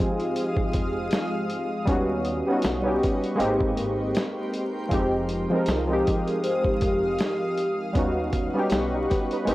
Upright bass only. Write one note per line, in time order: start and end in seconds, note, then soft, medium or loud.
0.74 1.07 F1 medium
1.88 2.40 D#2 loud
2.64 2.97 B1 medium
3.39 3.73 G#1 medium
3.78 4.11 G#1 medium
4.92 5.44 F1 medium
5.68 6.01 C2 medium
6.82 7.15 F1 medium
7.95 8.48 D#2 medium
8.71 9.04 B1 medium
9.47 9.55 G#1 medium